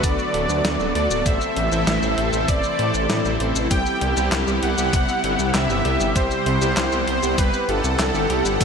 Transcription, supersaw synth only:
0, 0, Header, 1, 2, 480
1, 0, Start_track
1, 0, Tempo, 612245
1, 986, Time_signature, 4, 2, 24, 8
1, 6776, End_track
2, 0, Start_track
2, 0, Title_t, "Supersaw synth"
2, 0, Program_c, 0, 81
2, 27, Note_on_c, 0, 74, 121
2, 738, Note_off_c, 0, 74, 0
2, 747, Note_on_c, 0, 74, 107
2, 970, Note_off_c, 0, 74, 0
2, 987, Note_on_c, 0, 76, 123
2, 1947, Note_on_c, 0, 74, 107
2, 1975, Note_off_c, 0, 76, 0
2, 2636, Note_off_c, 0, 74, 0
2, 2904, Note_on_c, 0, 79, 121
2, 3354, Note_off_c, 0, 79, 0
2, 3627, Note_on_c, 0, 78, 127
2, 4346, Note_on_c, 0, 76, 111
2, 4368, Note_off_c, 0, 78, 0
2, 4827, Note_on_c, 0, 72, 105
2, 4841, Note_off_c, 0, 76, 0
2, 5538, Note_off_c, 0, 72, 0
2, 5547, Note_on_c, 0, 72, 99
2, 5786, Note_on_c, 0, 71, 105
2, 5794, Note_off_c, 0, 72, 0
2, 6027, Note_on_c, 0, 69, 104
2, 6034, Note_off_c, 0, 71, 0
2, 6735, Note_off_c, 0, 69, 0
2, 6745, Note_on_c, 0, 69, 98
2, 6776, Note_off_c, 0, 69, 0
2, 6776, End_track
0, 0, End_of_file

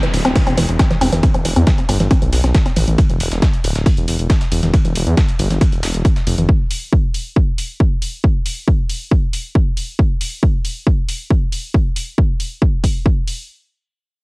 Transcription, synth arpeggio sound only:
0, 0, Header, 1, 2, 480
1, 0, Start_track
1, 0, Tempo, 437956
1, 1349, Time_signature, 4, 2, 24, 8
1, 15599, End_track
2, 0, Start_track
2, 0, Title_t, "Synth arpeggio sound"
2, 0, Program_c, 0, 84
2, 33, Note_on_c, 0, 52, 77
2, 58, Note_off_c, 0, 52, 0
2, 273, Note_on_c, 0, 60, 99
2, 298, Note_off_c, 0, 60, 0
2, 389, Note_on_c, 0, 52, 87
2, 416, Note_off_c, 0, 52, 0
2, 513, Note_on_c, 0, 60, 109
2, 575, Note_off_c, 0, 60, 0
2, 630, Note_on_c, 0, 52, 77
2, 656, Note_off_c, 0, 52, 0
2, 870, Note_on_c, 0, 60, 100
2, 896, Note_off_c, 0, 60, 0
2, 994, Note_on_c, 0, 52, 78
2, 1018, Note_off_c, 0, 52, 0
2, 1109, Note_on_c, 0, 60, 105
2, 1175, Note_off_c, 0, 60, 0
2, 1234, Note_on_c, 0, 52, 77
2, 1258, Note_off_c, 0, 52, 0
2, 1473, Note_on_c, 0, 60, 97
2, 1498, Note_off_c, 0, 60, 0
2, 1590, Note_on_c, 0, 52, 73
2, 1616, Note_off_c, 0, 52, 0
2, 1713, Note_on_c, 0, 60, 98
2, 1775, Note_off_c, 0, 60, 0
2, 1830, Note_on_c, 0, 52, 78
2, 1856, Note_off_c, 0, 52, 0
2, 2070, Note_on_c, 0, 60, 100
2, 2096, Note_off_c, 0, 60, 0
2, 2194, Note_on_c, 0, 52, 76
2, 2219, Note_off_c, 0, 52, 0
2, 2310, Note_on_c, 0, 60, 107
2, 2376, Note_off_c, 0, 60, 0
2, 2434, Note_on_c, 0, 52, 80
2, 2458, Note_off_c, 0, 52, 0
2, 2674, Note_on_c, 0, 60, 100
2, 2698, Note_off_c, 0, 60, 0
2, 2790, Note_on_c, 0, 52, 83
2, 2816, Note_off_c, 0, 52, 0
2, 2914, Note_on_c, 0, 60, 102
2, 2976, Note_off_c, 0, 60, 0
2, 3030, Note_on_c, 0, 52, 77
2, 3056, Note_off_c, 0, 52, 0
2, 15599, End_track
0, 0, End_of_file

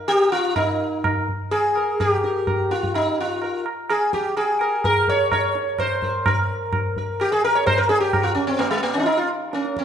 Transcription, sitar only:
0, 0, Header, 1, 2, 480
1, 0, Start_track
1, 0, Tempo, 476948
1, 562, Time_signature, 3, 2, 24, 8
1, 4877, Tempo, 468750
1, 9997, End_track
2, 0, Start_track
2, 0, Title_t, "Sitar"
2, 0, Program_c, 0, 104
2, 80, Note_on_c, 0, 67, 99
2, 318, Note_off_c, 0, 67, 0
2, 322, Note_on_c, 0, 65, 91
2, 561, Note_off_c, 0, 65, 0
2, 565, Note_on_c, 0, 63, 69
2, 576, Note_on_c, 0, 70, 38
2, 794, Note_off_c, 0, 70, 0
2, 1051, Note_on_c, 0, 70, 31
2, 1247, Note_off_c, 0, 63, 0
2, 1272, Note_off_c, 0, 70, 0
2, 1523, Note_on_c, 0, 68, 83
2, 1780, Note_on_c, 0, 70, 34
2, 1997, Note_off_c, 0, 70, 0
2, 2014, Note_off_c, 0, 68, 0
2, 2018, Note_on_c, 0, 67, 87
2, 2255, Note_on_c, 0, 70, 40
2, 2475, Note_off_c, 0, 70, 0
2, 2491, Note_on_c, 0, 70, 32
2, 2713, Note_off_c, 0, 70, 0
2, 2728, Note_on_c, 0, 65, 70
2, 2755, Note_off_c, 0, 67, 0
2, 2967, Note_off_c, 0, 65, 0
2, 2971, Note_on_c, 0, 63, 80
2, 3216, Note_off_c, 0, 63, 0
2, 3225, Note_on_c, 0, 65, 77
2, 3452, Note_on_c, 0, 70, 35
2, 3662, Note_off_c, 0, 65, 0
2, 3671, Note_off_c, 0, 70, 0
2, 3927, Note_on_c, 0, 68, 77
2, 4160, Note_off_c, 0, 68, 0
2, 4164, Note_on_c, 0, 67, 71
2, 4395, Note_off_c, 0, 67, 0
2, 4399, Note_on_c, 0, 68, 80
2, 4640, Note_on_c, 0, 70, 38
2, 4861, Note_off_c, 0, 70, 0
2, 4880, Note_on_c, 0, 70, 88
2, 4891, Note_off_c, 0, 68, 0
2, 5128, Note_off_c, 0, 70, 0
2, 5132, Note_on_c, 0, 73, 96
2, 5357, Note_off_c, 0, 73, 0
2, 5369, Note_on_c, 0, 73, 82
2, 5845, Note_off_c, 0, 73, 0
2, 5849, Note_on_c, 0, 72, 81
2, 6096, Note_on_c, 0, 70, 35
2, 6316, Note_off_c, 0, 70, 0
2, 6340, Note_on_c, 0, 70, 74
2, 6343, Note_off_c, 0, 72, 0
2, 7014, Note_off_c, 0, 70, 0
2, 7060, Note_on_c, 0, 70, 37
2, 7278, Note_off_c, 0, 70, 0
2, 7298, Note_on_c, 0, 67, 86
2, 7405, Note_off_c, 0, 67, 0
2, 7411, Note_on_c, 0, 68, 91
2, 7534, Note_off_c, 0, 68, 0
2, 7538, Note_on_c, 0, 70, 90
2, 7649, Note_on_c, 0, 73, 84
2, 7657, Note_off_c, 0, 70, 0
2, 7759, Note_off_c, 0, 73, 0
2, 7763, Note_on_c, 0, 72, 99
2, 7878, Note_on_c, 0, 70, 84
2, 7889, Note_off_c, 0, 72, 0
2, 7991, Note_off_c, 0, 70, 0
2, 7995, Note_on_c, 0, 68, 97
2, 8106, Note_off_c, 0, 68, 0
2, 8110, Note_on_c, 0, 67, 74
2, 8341, Note_off_c, 0, 67, 0
2, 8345, Note_on_c, 0, 65, 83
2, 8458, Note_off_c, 0, 65, 0
2, 8462, Note_on_c, 0, 61, 75
2, 8585, Note_off_c, 0, 61, 0
2, 8589, Note_on_c, 0, 60, 85
2, 8709, Note_on_c, 0, 58, 80
2, 8721, Note_off_c, 0, 60, 0
2, 8826, Note_off_c, 0, 58, 0
2, 8830, Note_on_c, 0, 56, 86
2, 8948, Note_off_c, 0, 56, 0
2, 8954, Note_on_c, 0, 58, 71
2, 9069, Note_on_c, 0, 61, 76
2, 9082, Note_off_c, 0, 58, 0
2, 9108, Note_off_c, 0, 61, 0
2, 9108, Note_on_c, 0, 63, 62
2, 9126, Note_on_c, 0, 61, 72
2, 9141, Note_off_c, 0, 63, 0
2, 9166, Note_on_c, 0, 65, 62
2, 9187, Note_off_c, 0, 61, 0
2, 9191, Note_on_c, 0, 63, 85
2, 9199, Note_off_c, 0, 65, 0
2, 9307, Note_on_c, 0, 65, 67
2, 9320, Note_off_c, 0, 63, 0
2, 9425, Note_off_c, 0, 65, 0
2, 9680, Note_on_c, 0, 70, 34
2, 9688, Note_on_c, 0, 61, 64
2, 9901, Note_off_c, 0, 70, 0
2, 9906, Note_off_c, 0, 61, 0
2, 9928, Note_on_c, 0, 70, 33
2, 9937, Note_on_c, 0, 60, 63
2, 9997, Note_off_c, 0, 60, 0
2, 9997, Note_off_c, 0, 70, 0
2, 9997, End_track
0, 0, End_of_file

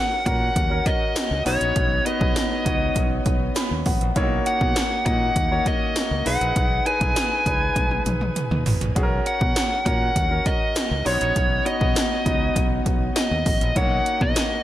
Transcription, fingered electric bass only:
0, 0, Header, 1, 2, 480
1, 0, Start_track
1, 0, Key_signature, 5, "major"
1, 0, Tempo, 600000
1, 1409, Time_signature, 4, 2, 24, 8
1, 11705, End_track
2, 0, Start_track
2, 0, Title_t, "Fingered electric bass"
2, 0, Program_c, 0, 33
2, 210, Note_on_c, 0, 46, 95
2, 389, Note_off_c, 0, 46, 0
2, 448, Note_on_c, 0, 39, 105
2, 628, Note_off_c, 0, 39, 0
2, 1048, Note_on_c, 0, 37, 95
2, 1138, Note_off_c, 0, 37, 0
2, 1168, Note_on_c, 0, 35, 96
2, 1258, Note_off_c, 0, 35, 0
2, 1287, Note_on_c, 0, 34, 92
2, 1378, Note_off_c, 0, 34, 0
2, 1407, Note_on_c, 0, 35, 104
2, 1588, Note_off_c, 0, 35, 0
2, 1769, Note_on_c, 0, 35, 97
2, 1859, Note_off_c, 0, 35, 0
2, 2128, Note_on_c, 0, 37, 97
2, 2308, Note_off_c, 0, 37, 0
2, 2366, Note_on_c, 0, 35, 102
2, 2547, Note_off_c, 0, 35, 0
2, 2607, Note_on_c, 0, 35, 98
2, 2788, Note_off_c, 0, 35, 0
2, 2970, Note_on_c, 0, 39, 85
2, 3059, Note_off_c, 0, 39, 0
2, 3089, Note_on_c, 0, 33, 87
2, 3179, Note_off_c, 0, 33, 0
2, 3209, Note_on_c, 0, 34, 91
2, 3299, Note_off_c, 0, 34, 0
2, 3329, Note_on_c, 0, 35, 103
2, 3509, Note_off_c, 0, 35, 0
2, 3688, Note_on_c, 0, 47, 93
2, 3778, Note_off_c, 0, 47, 0
2, 4047, Note_on_c, 0, 46, 96
2, 4228, Note_off_c, 0, 46, 0
2, 4288, Note_on_c, 0, 39, 96
2, 4468, Note_off_c, 0, 39, 0
2, 4889, Note_on_c, 0, 37, 86
2, 4979, Note_off_c, 0, 37, 0
2, 5009, Note_on_c, 0, 35, 101
2, 5099, Note_off_c, 0, 35, 0
2, 5128, Note_on_c, 0, 34, 89
2, 5218, Note_off_c, 0, 34, 0
2, 5249, Note_on_c, 0, 35, 101
2, 5429, Note_off_c, 0, 35, 0
2, 5609, Note_on_c, 0, 35, 101
2, 5699, Note_off_c, 0, 35, 0
2, 5969, Note_on_c, 0, 37, 84
2, 6149, Note_off_c, 0, 37, 0
2, 6208, Note_on_c, 0, 35, 94
2, 6388, Note_off_c, 0, 35, 0
2, 6447, Note_on_c, 0, 35, 90
2, 6628, Note_off_c, 0, 35, 0
2, 6809, Note_on_c, 0, 39, 90
2, 6899, Note_off_c, 0, 39, 0
2, 6928, Note_on_c, 0, 33, 92
2, 7018, Note_off_c, 0, 33, 0
2, 7048, Note_on_c, 0, 34, 76
2, 7138, Note_off_c, 0, 34, 0
2, 7170, Note_on_c, 0, 35, 95
2, 7349, Note_off_c, 0, 35, 0
2, 7528, Note_on_c, 0, 47, 91
2, 7618, Note_off_c, 0, 47, 0
2, 7889, Note_on_c, 0, 46, 93
2, 8069, Note_off_c, 0, 46, 0
2, 8128, Note_on_c, 0, 39, 95
2, 8308, Note_off_c, 0, 39, 0
2, 8730, Note_on_c, 0, 37, 91
2, 8819, Note_off_c, 0, 37, 0
2, 8848, Note_on_c, 0, 35, 94
2, 8938, Note_off_c, 0, 35, 0
2, 8971, Note_on_c, 0, 34, 94
2, 9060, Note_off_c, 0, 34, 0
2, 9090, Note_on_c, 0, 35, 101
2, 9269, Note_off_c, 0, 35, 0
2, 9448, Note_on_c, 0, 35, 94
2, 9538, Note_off_c, 0, 35, 0
2, 9808, Note_on_c, 0, 37, 91
2, 9988, Note_off_c, 0, 37, 0
2, 10049, Note_on_c, 0, 35, 98
2, 10229, Note_off_c, 0, 35, 0
2, 10289, Note_on_c, 0, 35, 96
2, 10469, Note_off_c, 0, 35, 0
2, 10650, Note_on_c, 0, 39, 89
2, 10740, Note_off_c, 0, 39, 0
2, 10769, Note_on_c, 0, 33, 91
2, 10859, Note_off_c, 0, 33, 0
2, 10889, Note_on_c, 0, 34, 92
2, 10979, Note_off_c, 0, 34, 0
2, 11010, Note_on_c, 0, 35, 109
2, 11189, Note_off_c, 0, 35, 0
2, 11369, Note_on_c, 0, 47, 96
2, 11459, Note_off_c, 0, 47, 0
2, 11705, End_track
0, 0, End_of_file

